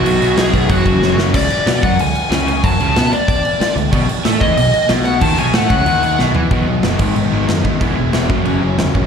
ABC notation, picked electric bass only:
X:1
M:4/4
L:1/8
Q:1/4=186
K:Bmix
V:1 name="Picked electric bass" clef=bass
B,,, B,,, B,,, B,,, F,,,2 F,,, F,,, | C,, z B,, F,, C,, z C,,2 | F,, C,, B,, z4 C,, | B,,, z A,, E,, B,,, z B,,,2 |
D,, B,,, A,, C,, D,,2 B,,, E,, | B,,, B,,, F,,, G,,, G,,, G,,, F,, G,,, | E,,, E,,, E,,, F,,, F,,, F,,, E,, ^A,,, |]